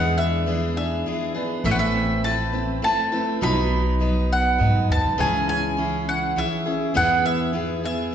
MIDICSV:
0, 0, Header, 1, 5, 480
1, 0, Start_track
1, 0, Key_signature, 4, "major"
1, 0, Tempo, 589971
1, 1342, Time_signature, 3, 2, 24, 8
1, 6629, End_track
2, 0, Start_track
2, 0, Title_t, "Mandolin"
2, 0, Program_c, 0, 25
2, 0, Note_on_c, 0, 78, 88
2, 144, Note_on_c, 0, 76, 90
2, 155, Note_off_c, 0, 78, 0
2, 618, Note_off_c, 0, 76, 0
2, 628, Note_on_c, 0, 76, 69
2, 1072, Note_off_c, 0, 76, 0
2, 1347, Note_on_c, 0, 76, 89
2, 1390, Note_off_c, 0, 76, 0
2, 1393, Note_on_c, 0, 78, 86
2, 1452, Note_off_c, 0, 78, 0
2, 1458, Note_on_c, 0, 76, 91
2, 1798, Note_off_c, 0, 76, 0
2, 1825, Note_on_c, 0, 81, 97
2, 2271, Note_off_c, 0, 81, 0
2, 2312, Note_on_c, 0, 81, 102
2, 2754, Note_off_c, 0, 81, 0
2, 2793, Note_on_c, 0, 83, 104
2, 3516, Note_off_c, 0, 83, 0
2, 3519, Note_on_c, 0, 78, 80
2, 3958, Note_off_c, 0, 78, 0
2, 4000, Note_on_c, 0, 81, 94
2, 4230, Note_off_c, 0, 81, 0
2, 4234, Note_on_c, 0, 80, 85
2, 4451, Note_off_c, 0, 80, 0
2, 4468, Note_on_c, 0, 80, 92
2, 4950, Note_off_c, 0, 80, 0
2, 4953, Note_on_c, 0, 78, 82
2, 5194, Note_off_c, 0, 78, 0
2, 5194, Note_on_c, 0, 76, 95
2, 5635, Note_off_c, 0, 76, 0
2, 5668, Note_on_c, 0, 78, 93
2, 5888, Note_off_c, 0, 78, 0
2, 5904, Note_on_c, 0, 76, 83
2, 6350, Note_off_c, 0, 76, 0
2, 6390, Note_on_c, 0, 76, 72
2, 6629, Note_off_c, 0, 76, 0
2, 6629, End_track
3, 0, Start_track
3, 0, Title_t, "Upright piano"
3, 0, Program_c, 1, 0
3, 0, Note_on_c, 1, 56, 84
3, 0, Note_on_c, 1, 71, 63
3, 146, Note_on_c, 1, 62, 57
3, 385, Note_on_c, 1, 64, 61
3, 609, Note_off_c, 1, 62, 0
3, 622, Note_on_c, 1, 62, 55
3, 849, Note_off_c, 1, 64, 0
3, 862, Note_on_c, 1, 64, 60
3, 1087, Note_off_c, 1, 71, 0
3, 1100, Note_on_c, 1, 71, 72
3, 1334, Note_off_c, 1, 71, 0
3, 1341, Note_on_c, 1, 57, 77
3, 1342, Note_off_c, 1, 56, 0
3, 1346, Note_on_c, 1, 71, 73
3, 1390, Note_off_c, 1, 62, 0
3, 1390, Note_off_c, 1, 64, 0
3, 1580, Note_on_c, 1, 60, 65
3, 1826, Note_on_c, 1, 64, 63
3, 2050, Note_off_c, 1, 60, 0
3, 2062, Note_on_c, 1, 60, 57
3, 2286, Note_off_c, 1, 64, 0
3, 2298, Note_on_c, 1, 64, 64
3, 2527, Note_off_c, 1, 71, 0
3, 2539, Note_on_c, 1, 71, 70
3, 2775, Note_off_c, 1, 71, 0
3, 2781, Note_off_c, 1, 57, 0
3, 2781, Note_on_c, 1, 54, 83
3, 2787, Note_on_c, 1, 71, 69
3, 2828, Note_off_c, 1, 64, 0
3, 2830, Note_off_c, 1, 60, 0
3, 3016, Note_on_c, 1, 59, 67
3, 3261, Note_on_c, 1, 63, 58
3, 3489, Note_off_c, 1, 59, 0
3, 3501, Note_on_c, 1, 59, 55
3, 3729, Note_off_c, 1, 63, 0
3, 3741, Note_on_c, 1, 63, 59
3, 3973, Note_off_c, 1, 71, 0
3, 3985, Note_on_c, 1, 71, 63
3, 4221, Note_off_c, 1, 54, 0
3, 4221, Note_off_c, 1, 59, 0
3, 4223, Note_off_c, 1, 71, 0
3, 4224, Note_on_c, 1, 61, 77
3, 4231, Note_on_c, 1, 68, 63
3, 4269, Note_off_c, 1, 63, 0
3, 4455, Note_off_c, 1, 61, 0
3, 4467, Note_on_c, 1, 61, 68
3, 4708, Note_on_c, 1, 64, 62
3, 4936, Note_off_c, 1, 61, 0
3, 4948, Note_on_c, 1, 61, 55
3, 5167, Note_off_c, 1, 64, 0
3, 5179, Note_on_c, 1, 64, 58
3, 5404, Note_off_c, 1, 68, 0
3, 5416, Note_on_c, 1, 68, 68
3, 5652, Note_off_c, 1, 68, 0
3, 5659, Note_on_c, 1, 59, 87
3, 5664, Note_on_c, 1, 68, 69
3, 5665, Note_off_c, 1, 61, 0
3, 5708, Note_off_c, 1, 64, 0
3, 5885, Note_off_c, 1, 59, 0
3, 5897, Note_on_c, 1, 59, 57
3, 6137, Note_on_c, 1, 64, 62
3, 6366, Note_off_c, 1, 59, 0
3, 6378, Note_on_c, 1, 59, 58
3, 6607, Note_off_c, 1, 64, 0
3, 6629, Note_off_c, 1, 59, 0
3, 6629, Note_off_c, 1, 68, 0
3, 6629, End_track
4, 0, Start_track
4, 0, Title_t, "Steel-string acoustic guitar"
4, 0, Program_c, 2, 25
4, 0, Note_on_c, 2, 52, 92
4, 0, Note_on_c, 2, 59, 76
4, 0, Note_on_c, 2, 62, 88
4, 0, Note_on_c, 2, 68, 78
4, 373, Note_off_c, 2, 52, 0
4, 376, Note_on_c, 2, 52, 57
4, 379, Note_off_c, 2, 62, 0
4, 381, Note_off_c, 2, 59, 0
4, 384, Note_on_c, 2, 59, 65
4, 386, Note_off_c, 2, 68, 0
4, 389, Note_on_c, 2, 62, 65
4, 395, Note_on_c, 2, 68, 70
4, 611, Note_off_c, 2, 68, 0
4, 619, Note_off_c, 2, 52, 0
4, 621, Note_on_c, 2, 68, 45
4, 622, Note_off_c, 2, 62, 0
4, 623, Note_off_c, 2, 59, 0
4, 632, Note_on_c, 2, 62, 41
4, 638, Note_on_c, 2, 59, 40
4, 857, Note_off_c, 2, 59, 0
4, 862, Note_off_c, 2, 68, 0
4, 862, Note_on_c, 2, 52, 53
4, 864, Note_off_c, 2, 62, 0
4, 866, Note_on_c, 2, 59, 66
4, 874, Note_on_c, 2, 62, 68
4, 877, Note_on_c, 2, 68, 69
4, 1085, Note_off_c, 2, 68, 0
4, 1094, Note_off_c, 2, 62, 0
4, 1094, Note_on_c, 2, 68, 58
4, 1100, Note_off_c, 2, 59, 0
4, 1102, Note_off_c, 2, 52, 0
4, 1103, Note_on_c, 2, 62, 52
4, 1110, Note_on_c, 2, 59, 45
4, 1338, Note_off_c, 2, 68, 0
4, 1338, Note_on_c, 2, 45, 78
4, 1342, Note_on_c, 2, 52, 92
4, 1343, Note_off_c, 2, 62, 0
4, 1344, Note_off_c, 2, 59, 0
4, 1345, Note_on_c, 2, 57, 86
4, 1347, Note_on_c, 2, 60, 86
4, 1349, Note_on_c, 2, 64, 87
4, 1352, Note_on_c, 2, 71, 99
4, 1811, Note_off_c, 2, 57, 0
4, 1817, Note_off_c, 2, 60, 0
4, 1820, Note_off_c, 2, 45, 0
4, 1821, Note_off_c, 2, 64, 0
4, 1821, Note_on_c, 2, 57, 54
4, 1822, Note_off_c, 2, 52, 0
4, 1826, Note_on_c, 2, 60, 61
4, 1830, Note_on_c, 2, 64, 65
4, 1831, Note_off_c, 2, 71, 0
4, 1835, Note_on_c, 2, 71, 67
4, 2043, Note_off_c, 2, 71, 0
4, 2050, Note_off_c, 2, 64, 0
4, 2053, Note_on_c, 2, 71, 43
4, 2055, Note_off_c, 2, 60, 0
4, 2059, Note_off_c, 2, 57, 0
4, 2060, Note_on_c, 2, 64, 43
4, 2065, Note_on_c, 2, 60, 44
4, 2069, Note_on_c, 2, 57, 34
4, 2286, Note_off_c, 2, 57, 0
4, 2288, Note_off_c, 2, 60, 0
4, 2295, Note_off_c, 2, 64, 0
4, 2296, Note_on_c, 2, 57, 62
4, 2297, Note_off_c, 2, 71, 0
4, 2298, Note_on_c, 2, 60, 64
4, 2304, Note_on_c, 2, 64, 62
4, 2309, Note_on_c, 2, 71, 55
4, 2527, Note_off_c, 2, 71, 0
4, 2530, Note_off_c, 2, 64, 0
4, 2536, Note_on_c, 2, 71, 55
4, 2537, Note_off_c, 2, 60, 0
4, 2539, Note_off_c, 2, 57, 0
4, 2540, Note_on_c, 2, 64, 54
4, 2547, Note_on_c, 2, 60, 47
4, 2551, Note_on_c, 2, 57, 52
4, 2774, Note_on_c, 2, 47, 75
4, 2777, Note_off_c, 2, 71, 0
4, 2778, Note_off_c, 2, 57, 0
4, 2780, Note_off_c, 2, 60, 0
4, 2781, Note_off_c, 2, 64, 0
4, 2782, Note_on_c, 2, 54, 73
4, 2784, Note_on_c, 2, 59, 89
4, 2786, Note_on_c, 2, 63, 93
4, 2786, Note_on_c, 2, 71, 91
4, 3243, Note_off_c, 2, 54, 0
4, 3250, Note_off_c, 2, 59, 0
4, 3252, Note_on_c, 2, 54, 53
4, 3256, Note_off_c, 2, 63, 0
4, 3258, Note_off_c, 2, 47, 0
4, 3258, Note_off_c, 2, 71, 0
4, 3260, Note_on_c, 2, 59, 55
4, 3266, Note_on_c, 2, 63, 62
4, 3268, Note_on_c, 2, 71, 68
4, 3719, Note_off_c, 2, 54, 0
4, 3726, Note_off_c, 2, 59, 0
4, 3729, Note_on_c, 2, 54, 57
4, 3733, Note_off_c, 2, 63, 0
4, 3736, Note_on_c, 2, 59, 50
4, 3738, Note_off_c, 2, 71, 0
4, 3743, Note_on_c, 2, 63, 58
4, 3748, Note_on_c, 2, 71, 65
4, 4211, Note_off_c, 2, 54, 0
4, 4213, Note_on_c, 2, 49, 74
4, 4214, Note_on_c, 2, 52, 88
4, 4216, Note_off_c, 2, 59, 0
4, 4218, Note_off_c, 2, 63, 0
4, 4220, Note_on_c, 2, 61, 69
4, 4222, Note_off_c, 2, 71, 0
4, 4222, Note_on_c, 2, 64, 92
4, 4225, Note_on_c, 2, 68, 81
4, 4691, Note_off_c, 2, 52, 0
4, 4694, Note_off_c, 2, 61, 0
4, 4694, Note_on_c, 2, 52, 65
4, 4697, Note_off_c, 2, 49, 0
4, 4702, Note_off_c, 2, 64, 0
4, 4704, Note_on_c, 2, 61, 65
4, 4705, Note_on_c, 2, 64, 59
4, 4706, Note_off_c, 2, 68, 0
4, 4709, Note_on_c, 2, 68, 65
4, 5165, Note_off_c, 2, 52, 0
4, 5172, Note_off_c, 2, 61, 0
4, 5175, Note_on_c, 2, 52, 58
4, 5176, Note_off_c, 2, 64, 0
4, 5181, Note_off_c, 2, 68, 0
4, 5181, Note_on_c, 2, 61, 52
4, 5186, Note_on_c, 2, 64, 66
4, 5190, Note_on_c, 2, 68, 65
4, 5404, Note_off_c, 2, 68, 0
4, 5414, Note_off_c, 2, 64, 0
4, 5414, Note_on_c, 2, 68, 57
4, 5417, Note_off_c, 2, 61, 0
4, 5418, Note_off_c, 2, 52, 0
4, 5424, Note_on_c, 2, 64, 53
4, 5427, Note_on_c, 2, 61, 49
4, 5646, Note_off_c, 2, 64, 0
4, 5646, Note_off_c, 2, 68, 0
4, 5647, Note_on_c, 2, 52, 73
4, 5648, Note_off_c, 2, 61, 0
4, 5652, Note_on_c, 2, 59, 89
4, 5656, Note_on_c, 2, 64, 92
4, 5656, Note_on_c, 2, 68, 79
4, 6116, Note_off_c, 2, 52, 0
4, 6126, Note_off_c, 2, 64, 0
4, 6126, Note_on_c, 2, 52, 63
4, 6131, Note_off_c, 2, 59, 0
4, 6134, Note_off_c, 2, 68, 0
4, 6134, Note_on_c, 2, 59, 61
4, 6136, Note_on_c, 2, 64, 57
4, 6144, Note_on_c, 2, 68, 61
4, 6365, Note_off_c, 2, 68, 0
4, 6373, Note_off_c, 2, 52, 0
4, 6373, Note_off_c, 2, 64, 0
4, 6374, Note_on_c, 2, 68, 47
4, 6377, Note_off_c, 2, 59, 0
4, 6383, Note_on_c, 2, 64, 45
4, 6389, Note_on_c, 2, 59, 40
4, 6605, Note_off_c, 2, 59, 0
4, 6613, Note_off_c, 2, 64, 0
4, 6617, Note_off_c, 2, 68, 0
4, 6629, End_track
5, 0, Start_track
5, 0, Title_t, "Upright bass"
5, 0, Program_c, 3, 32
5, 0, Note_on_c, 3, 40, 97
5, 829, Note_off_c, 3, 40, 0
5, 1334, Note_on_c, 3, 33, 94
5, 2265, Note_off_c, 3, 33, 0
5, 2782, Note_on_c, 3, 35, 85
5, 3709, Note_off_c, 3, 35, 0
5, 3745, Note_on_c, 3, 44, 80
5, 3851, Note_off_c, 3, 44, 0
5, 3866, Note_on_c, 3, 42, 78
5, 3972, Note_off_c, 3, 42, 0
5, 3987, Note_on_c, 3, 39, 83
5, 4093, Note_off_c, 3, 39, 0
5, 4101, Note_on_c, 3, 37, 80
5, 4209, Note_off_c, 3, 37, 0
5, 4223, Note_on_c, 3, 37, 91
5, 5150, Note_off_c, 3, 37, 0
5, 5663, Note_on_c, 3, 40, 84
5, 6589, Note_off_c, 3, 40, 0
5, 6629, End_track
0, 0, End_of_file